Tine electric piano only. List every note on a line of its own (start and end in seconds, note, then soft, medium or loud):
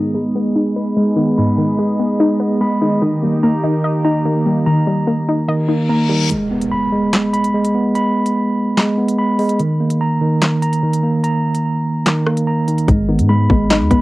0.00 0.34 G#3 medium
0.00 1.16 B3 medium
0.14 0.75 B5 medium
0.35 0.95 G#3 medium
0.76 1.36 B5 medium
0.96 2.19 G#3 medium
1.17 2.39 B3 medium
1.38 2.60 B5 medium
2.20 2.80 G#3 medium
2.40 3.02 B3 medium
2.61 3.02 B5 medium
2.81 3.02 G#3 medium
3.02 3.62 D#3 medium
3.23 4.45 A#3 medium
3.43 4.03 A#5 medium
3.64 4.24 D#3 medium
4.05 4.65 A#5 medium
4.25 5.47 D#3 medium
4.46 5.68 A#3 medium
4.66 5.88 A#5 medium
5.48 6.09 D#3 medium
5.69 6.31 A#3 medium
5.90 6.31 A#5 medium
6.10 6.31 D#3 medium
6.31 6.91 G#3 medium
6.51 7.73 B3 medium
6.72 7.32 B5 medium
6.92 7.53 G#3 medium
7.33 7.94 B5 medium
7.54 8.76 G#3 medium
7.75 8.97 B3 medium
7.95 9.17 B5 medium
8.77 9.38 G#3 medium
8.98 9.60 B3 medium
9.19 9.60 B5 medium
9.39 9.60 G#3 medium
9.60 10.20 D#3 medium
9.80 11.02 A#3 medium
10.01 10.61 A#5 medium
10.21 10.81 D#3 medium
10.62 11.23 A#5 medium
10.83 12.05 D#3 medium
11.03 12.25 A#3 medium
11.24 12.46 A#5 medium
12.06 12.66 D#3 medium
12.26 12.88 A#3 medium
12.47 12.88 A#5 medium
12.68 12.88 D#3 medium
12.88 13.49 G#3 medium
13.09 14.02 B3 medium
13.29 13.90 B5 medium
13.50 14.02 G#3 medium
13.91 14.02 B5 medium